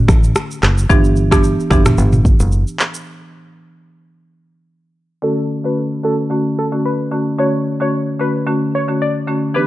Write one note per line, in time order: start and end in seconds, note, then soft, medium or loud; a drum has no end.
0.08 0.32 A1 medium
0.08 finger snap medium
0.08 kick loud
0.08 cross-stick loud
0.08 shaker medium
0.24 shaker loud
0.35 finger snap medium
0.35 cross-stick loud
0.35 shaker medium
0.51 shaker medium
0.63 0.86 F#1 medium
0.63 finger snap medium
0.63 cross-stick loud
0.63 clap loud
0.63 shaker soft
0.78 shaker medium
0.90 1.55 G1 loud
0.90 1.11 E3 loud
0.90 1.11 B3 medium
0.90 1.11 D4 medium
0.90 1.11 G4 loud
0.90 kick loud
0.90 shaker medium
1.04 shaker soft
1.16 shaker medium
1.31 1.51 E3 medium
1.31 1.51 B3 medium
1.31 1.51 D4 medium
1.31 1.51 G4 medium
1.31 finger snap loud
1.31 kick medium
1.31 cross-stick loud
1.31 shaker medium
1.44 shaker medium
1.60 shaker medium
1.70 1.94 F#1 loud
1.70 1.92 E3 medium
1.70 1.92 B3 medium
1.70 1.92 D4 medium
1.70 1.92 G4 medium
1.70 finger snap medium
1.70 kick medium
1.70 cross-stick medium
1.70 shaker medium
1.86 finger snap medium
1.86 cross-stick loud
1.86 mid tom loud
1.86 shaker loud
1.98 2.34 G1 loud
1.98 shaker medium
2.13 mid tom loud
2.13 shaker medium
2.25 kick medium
2.25 shaker medium
2.40 2.63 F#1 loud
2.40 shaker loud
2.52 shaker medium
2.67 shaker medium
2.79 clap loud
2.79 shaker soft
2.94 shaker medium
5.22 5.61 D3 medium
5.22 5.61 A3 medium
5.22 5.61 C#4 medium
5.22 5.61 F#4 loud
5.22 5.36 A4 medium
5.64 6.00 D3 medium
5.64 6.00 A3 medium
5.64 6.01 C#4 medium
5.64 6.01 F#4 medium
5.64 5.75 B4 medium
6.03 6.28 D3 medium
6.03 6.28 A3 medium
6.03 6.29 C#4 medium
6.03 6.29 F#4 medium
6.03 6.17 A4 medium
6.30 6.51 D3 medium
6.30 6.51 A3 medium
6.30 6.51 C#4 medium
6.30 6.52 F#4 loud
6.59 6.71 A4 medium
6.72 6.92 D3 medium
6.72 6.92 A3 medium
6.72 6.92 C#4 medium
6.72 6.92 F#4 medium
6.85 7.24 B4 medium
7.11 7.32 D3 medium
7.11 7.32 A3 medium
7.11 7.32 C#4 medium
7.11 7.33 F#4 medium
7.38 7.77 D3 medium
7.38 7.77 A3 medium
7.38 7.77 C#4 medium
7.38 7.77 F#4 loud
7.38 7.52 C#5 medium
7.80 8.16 D3 medium
7.80 8.17 A3 medium
7.80 8.17 C#4 medium
7.80 8.17 F#4 medium
7.80 7.91 C#5 medium
8.19 8.45 D3 medium
8.19 8.45 A3 medium
8.19 8.45 C#4 medium
8.19 8.45 F#4 medium
8.19 8.33 B4 medium
8.46 8.67 D3 medium
8.46 8.68 A3 medium
8.46 8.68 C#4 medium
8.46 8.68 F#4 medium
8.75 8.87 C#5 medium
8.88 9.08 D3 medium
8.88 9.08 A3 medium
8.88 9.08 C#4 medium
8.88 9.08 F#4 medium
9.02 9.41 D5 medium
9.27 9.48 D3 medium
9.27 9.49 A3 medium
9.27 9.49 C#4 medium
9.27 9.49 F#4 medium
9.54 9.67 E3 medium
9.54 9.67 B3 medium
9.54 9.67 D4 medium
9.54 9.67 G4 loud
9.54 9.67 B4 loud